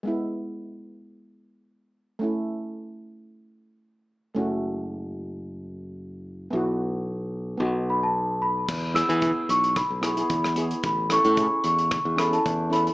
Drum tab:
CC |----------------|----------------|----------------|----------------|
HH |----------------|----------------|----------------|----------------|
SD |----------------|----------------|----------------|----------------|
BD |----------------|----------------|----------------|----------------|

CC |x---------------|----------------|
HH |--xxx-xxx-xxx-xx|x-xxx-xxx-xxx-xx|
SD |--r-----r-r--r--|--r-----r-r-----|
BD |o---o---o---o---|o---o---o---o---|